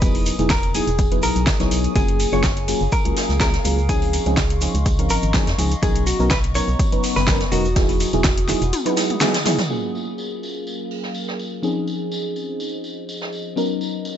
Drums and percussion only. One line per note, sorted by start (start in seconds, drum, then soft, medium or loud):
0.02 kick loud
0.02 closed hi-hat medium
0.02 tambourine medium
0.02 cabasa medium
0.15 open hi-hat medium
0.26 open hi-hat loud
0.26 tambourine medium
0.26 cabasa medium
0.39 closed hi-hat soft
0.39 cabasa soft
0.50 kick loud
0.50 snare loud
0.50 closed hi-hat medium
0.50 tambourine medium
0.50 cabasa medium
0.63 closed hi-hat soft
0.74 open hi-hat loud
0.74 tambourine medium
0.74 cabasa medium
0.87 closed hi-hat soft
0.87 cabasa soft
0.99 kick loud
0.99 closed hi-hat medium
0.99 tambourine medium
0.99 cabasa soft
1.12 closed hi-hat soft
1.22 open hi-hat loud
1.22 tambourine medium
1.22 cabasa medium
1.36 closed hi-hat soft
1.36 cabasa soft
1.47 kick loud
1.47 snare loud
1.47 closed hi-hat medium
1.47 tambourine medium
1.47 cabasa medium
1.60 snare soft
1.60 closed hi-hat soft
1.60 cabasa soft
1.71 open hi-hat loud
1.71 tambourine medium
1.71 cabasa loud
1.84 closed hi-hat soft
1.84 cabasa soft
1.96 kick loud
1.96 closed hi-hat medium
1.96 tambourine medium
1.96 cabasa medium
2.08 closed hi-hat soft
2.19 open hi-hat loud
2.19 tambourine medium
2.19 cabasa loud
2.33 cabasa soft
2.43 kick loud
2.43 snare loud
2.43 closed hi-hat medium
2.43 tambourine medium
2.43 cabasa medium
2.57 closed hi-hat soft
2.68 open hi-hat loud
2.68 tambourine medium
2.68 cabasa medium
2.80 cabasa soft
2.92 kick loud
2.92 closed hi-hat medium
2.92 tambourine medium
2.92 cabasa medium
3.05 closed hi-hat soft
3.17 snare loud
3.17 open hi-hat loud
3.17 tambourine medium
3.17 cabasa medium
3.29 snare soft
3.29 cabasa soft
3.40 kick loud
3.40 snare loud
3.40 closed hi-hat medium
3.40 tambourine medium
3.40 cabasa medium
3.54 snare medium
3.54 closed hi-hat soft
3.64 open hi-hat loud
3.64 tambourine medium
3.64 cabasa loud
3.78 cabasa soft
3.89 kick loud
3.89 closed hi-hat medium
3.89 tambourine medium
3.89 cabasa medium
4.02 open hi-hat medium
4.13 open hi-hat loud
4.13 tambourine medium
4.13 cabasa loud
4.26 closed hi-hat soft
4.26 cabasa soft
4.37 kick loud
4.37 snare loud
4.37 closed hi-hat medium
4.37 tambourine medium
4.37 cabasa soft
4.50 closed hi-hat medium
4.61 open hi-hat loud
4.61 tambourine medium
4.61 cabasa medium
4.75 closed hi-hat soft
4.75 cabasa soft
4.86 kick loud
4.86 closed hi-hat medium
4.86 tambourine medium
4.86 cabasa medium
4.99 closed hi-hat soft
5.09 open hi-hat loud
5.09 tambourine medium
5.09 cabasa medium
5.22 closed hi-hat soft
5.22 cabasa soft
5.33 kick loud
5.33 snare loud
5.33 closed hi-hat medium
5.33 tambourine medium
5.33 cabasa soft
5.47 snare soft
5.47 closed hi-hat medium
5.58 open hi-hat loud
5.58 tambourine medium
5.58 cabasa medium
5.71 closed hi-hat soft
5.71 cabasa soft
5.83 kick loud
5.83 closed hi-hat medium
5.83 tambourine medium
5.83 cabasa soft
5.96 closed hi-hat medium
6.06 open hi-hat loud
6.06 tambourine medium
6.06 cabasa medium
6.20 cabasa soft
6.30 kick loud
6.30 snare loud
6.30 closed hi-hat medium
6.30 tambourine medium
6.30 cabasa soft
6.44 closed hi-hat medium
6.54 open hi-hat loud
6.54 tambourine medium
6.54 cabasa medium
6.68 cabasa soft
6.79 kick loud
6.79 closed hi-hat medium
6.79 tambourine medium
6.79 cabasa soft
6.92 closed hi-hat soft
7.04 open hi-hat loud
7.04 open hi-hat medium
7.04 cabasa medium
7.16 snare soft
7.16 cabasa soft
7.27 kick loud
7.27 snare loud
7.27 closed hi-hat medium
7.27 tambourine medium
7.27 cabasa medium
7.40 snare soft
7.40 closed hi-hat medium
7.52 open hi-hat medium
7.52 cabasa medium
7.65 cabasa soft
7.76 kick loud
7.76 snare loud
7.76 closed hi-hat medium
7.76 tambourine medium
7.76 cabasa soft
7.89 open hi-hat medium
7.89 cabasa soft
8.00 open hi-hat loud
8.00 tambourine medium
8.00 cabasa medium
8.13 closed hi-hat soft
8.13 cabasa soft
8.24 kick loud
8.24 snare loud
8.24 closed hi-hat medium
8.24 tambourine medium
8.24 cabasa soft
8.38 closed hi-hat medium
8.48 snare medium
8.48 open hi-hat loud
8.48 tambourine medium
8.48 cabasa medium
8.62 closed hi-hat soft
8.62 cabasa soft
8.73 closed hi-hat medium
8.73 high tom medium
8.73 tambourine medium
8.73 cabasa soft
8.86 closed hi-hat medium
8.86 high tom medium
8.86 cabasa soft
8.97 snare loud
8.97 open hi-hat loud
8.97 tambourine medium
8.97 cabasa medium
9.10 closed hi-hat soft
9.10 mid tom medium
9.10 cabasa soft
9.20 snare loud
9.20 closed hi-hat medium
9.20 mid tom medium
9.20 tambourine medium
9.20 cabasa medium
9.34 snare loud
9.34 closed hi-hat medium
9.34 tambourine medium
9.34 cabasa soft
9.45 snare loud
9.45 mid tom medium
9.45 open hi-hat loud
9.45 tambourine medium
9.45 cabasa medium
9.59 snare loud
9.59 closed hi-hat soft
9.59 mid tom medium
9.59 tambourine medium
9.59 cabasa soft
9.70 tambourine medium
9.95 tambourine medium
10.18 tambourine medium
10.43 tambourine medium
10.67 tambourine medium
10.91 open hi-hat medium
11.03 snare soft
11.14 tambourine medium
11.28 snare soft
11.39 tambourine medium
11.63 tambourine medium
11.87 tambourine medium
12.12 tambourine medium
12.36 tambourine medium
12.60 tambourine medium
12.84 tambourine medium
13.09 tambourine medium
13.21 snare soft
13.33 tambourine medium
13.57 tambourine medium
13.81 tambourine medium
14.05 tambourine medium